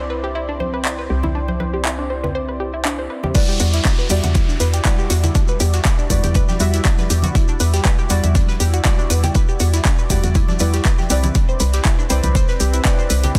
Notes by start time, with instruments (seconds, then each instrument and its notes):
Already playing: fm bass C2, analog synth pad C4 E4 C5 D5
0.10 synth arpeggio sound B4
0.24 synth arpeggio sound G4
0.35 synth arpeggio sound E4
0.49 synth arpeggio sound D4
0.60 synth arpeggio sound C5, high conga
0.74 synth arpeggio sound B4
0.85 synth arpeggio sound C5, clap
0.99 synth arpeggio sound B4
1.10 fm bass C2, synth arpeggio sound G4
1.23 synth arpeggio sound E4, high conga, low conga
1.35 synth arpeggio sound D4
1.48 synth arpeggio sound C5, high conga
1.60 synth arpeggio sound B4, high conga
1.74 synth arpeggio sound G4
1.85 synth arpeggio sound E4, clap
1.99 synth arpeggio sound D4
2.10 synth arpeggio sound C5
2.24 synth arpeggio sound B4, low conga
2.35 synth arpeggio sound C5
2.49 synth arpeggio sound B4
2.60 synth arpeggio sound G4
2.74 synth arpeggio sound E4
2.85 synth arpeggio sound D4, clap
2.99 synth arpeggio sound C5
3.10 synth arpeggio sound B4
3.23 synth arpeggio sound G4, high conga, low conga
3.34 synth stab G3 E4 F#4 D5, analog synth pad G3 E4 F#4 D5, synth arpeggio sound B4, kick, closed hi-hat, crash, downlifter, shekere
3.48 synth arpeggio sound G4, shekere
3.60 fm bass E2, synth arpeggio sound F#4, closed hi-hat, open hi-hat, shekere
3.74 synth arpeggio sound E4, snare, closed hi-hat, shekere
3.84 synth arpeggio sound D4, kick, snare, clap, closed hi-hat, shekere
3.99 synth arpeggio sound B4, shekere
4.09 fm bass E2, synth stab G3 E4 F#4 D5, synth arpeggio sound G4, closed hi-hat, open hi-hat, shekere
4.23 fm bass E2, synth arpeggio sound F#4, closed hi-hat, high conga, low conga, shekere
4.34 synth arpeggio sound E4, kick, closed hi-hat, high conga, shekere
4.48 synth arpeggio sound D4, snare, shekere
4.60 fm bass E2, synth arpeggio sound B4, closed hi-hat, open hi-hat, shekere
4.73 synth arpeggio sound G4, closed hi-hat, shekere
4.84 synth stab G3 E4 F#4 D5, synth arpeggio sound B4, kick, snare, clap, closed hi-hat, shekere
4.99 synth arpeggio sound G4, shekere
5.10 fm bass E2, synth arpeggio sound F#4, closed hi-hat, open hi-hat, shekere
5.23 synth arpeggio sound E4, closed hi-hat, low conga, shekere
5.35 synth arpeggio sound D4, kick, closed hi-hat, shekere
5.48 synth arpeggio sound B4, shekere
5.60 fm bass E2, synth arpeggio sound G4, closed hi-hat, open hi-hat, shekere
5.73 synth arpeggio sound F#4, snare, closed hi-hat, shekere
5.85 synth arpeggio sound E4, kick, snare, clap, closed hi-hat, shekere
5.99 synth arpeggio sound D4, shekere
6.10 fm bass E2, synth stab G3 E4 F#4 D5, synth arpeggio sound B4, kick, closed hi-hat, open hi-hat, shekere
6.23 fm bass E2, synth arpeggio sound G4, closed hi-hat, high conga, low conga, shekere
6.34 synth arpeggio sound B4, kick, closed hi-hat, shekere
6.49 synth arpeggio sound G4, snare, high conga, shekere
6.59 fm bass E2, synth stab G3 E4 F#4 E5, synth arpeggio sound F#4, closed hi-hat, open hi-hat, shekere
6.73 synth arpeggio sound E4, snare, closed hi-hat, shekere
6.84 synth arpeggio sound D4, kick, snare, clap, closed hi-hat, shekere
6.98 synth arpeggio sound B4, snare, high conga, shekere
7.10 fm bass E2, synth arpeggio sound G4, closed hi-hat, open hi-hat, shekere
7.22 synth arpeggio sound F#4, closed hi-hat, high conga, low conga, shekere
7.35 synth arpeggio sound E4, kick, closed hi-hat, shekere
7.48 synth arpeggio sound D4, shekere
7.60 fm bass E2, synth arpeggio sound B4, closed hi-hat, open hi-hat, shekere
7.74 synth arpeggio sound G4, snare, closed hi-hat, shekere
7.85 synth arpeggio sound B4, kick, snare, clap, closed hi-hat, shekere
7.98 synth arpeggio sound G4, shekere
8.09 fm bass E2, synth stab G3 E4 F#4 D5, synth arpeggio sound F#4, closed hi-hat, open hi-hat, shekere
8.23 fm bass E2, synth arpeggio sound E4, closed hi-hat, high conga, low conga, shekere
8.35 synth arpeggio sound D4, kick, closed hi-hat, high conga, shekere
8.49 synth arpeggio sound B4, snare, shekere
8.60 fm bass E2, synth arpeggio sound G4, closed hi-hat, open hi-hat, shekere
8.74 synth arpeggio sound F#4, closed hi-hat, shekere
8.84 synth stab G3 E4 F#4 D5, synth arpeggio sound E4, kick, snare, clap, closed hi-hat, shekere
8.99 synth arpeggio sound D4, shekere
9.10 fm bass E2, synth arpeggio sound B4, closed hi-hat, open hi-hat, shekere
9.24 synth arpeggio sound G4, closed hi-hat, low conga, shekere
9.34 synth arpeggio sound B4, kick, closed hi-hat, shekere
9.48 synth arpeggio sound G4, shekere
9.60 fm bass E2, synth arpeggio sound F#4, closed hi-hat, open hi-hat, shekere
9.74 synth arpeggio sound E4, snare, closed hi-hat, shekere
9.85 synth arpeggio sound D4, kick, snare, clap, closed hi-hat, shekere
9.98 synth arpeggio sound B4, shekere
10.10 fm bass E2, synth stab G3 E4 F#4 D5, synth arpeggio sound G4, kick, closed hi-hat, open hi-hat, shekere
10.23 fm bass E2, synth arpeggio sound F#4, closed hi-hat, high conga, low conga, shekere
10.35 synth arpeggio sound E4, kick, closed hi-hat, shekere
10.48 synth arpeggio sound D4, snare, high conga, shekere
10.59 fm bass E2, synth stab G3 E4 F#4 D5, synth arpeggio sound B4, closed hi-hat, open hi-hat, shekere
10.73 synth arpeggio sound G4, snare, closed hi-hat, shekere
10.85 synth arpeggio sound B4, kick, snare, clap, closed hi-hat, shekere
10.98 synth arpeggio sound G4, snare, high conga, shekere
11.09 fm bass C2, synth stab C4 E4 B4 D5, analog synth pad C4 B4, synth arpeggio sound G4, closed hi-hat, open hi-hat, shekere
11.23 synth arpeggio sound E4, closed hi-hat, high conga, low conga, shekere
11.35 synth arpeggio sound D4, kick, closed hi-hat, shekere
11.49 synth arpeggio sound C5, shekere
11.60 fm bass C2, synth arpeggio sound B4, closed hi-hat, open hi-hat, shekere
11.73 synth arpeggio sound G4, snare, closed hi-hat, shekere
11.85 synth arpeggio sound E4, kick, snare, clap, closed hi-hat, shekere
11.99 synth arpeggio sound D4, shekere
12.09 fm bass C2, synth stab C4 E4 B4 D5, synth arpeggio sound C5, closed hi-hat, open hi-hat, shekere
12.23 fm bass C2, synth arpeggio sound B4, closed hi-hat, high conga, low conga, shekere
12.35 synth arpeggio sound C5, kick, closed hi-hat, high conga, shekere
12.48 synth arpeggio sound B4, snare, shekere
12.60 fm bass C2, synth arpeggio sound G4, closed hi-hat, open hi-hat, shekere
12.74 synth arpeggio sound E4, closed hi-hat, shekere
12.84 synth stab C4 E4 B4 D5, synth arpeggio sound D4, kick, snare, clap, closed hi-hat, shekere
12.99 synth arpeggio sound C5, shekere
13.10 fm bass C2, synth arpeggio sound B4, closed hi-hat, open hi-hat, shekere
13.24 synth arpeggio sound G4, closed hi-hat, low conga, shekere
13.35 synth arpeggio sound E4, kick, closed hi-hat, shekere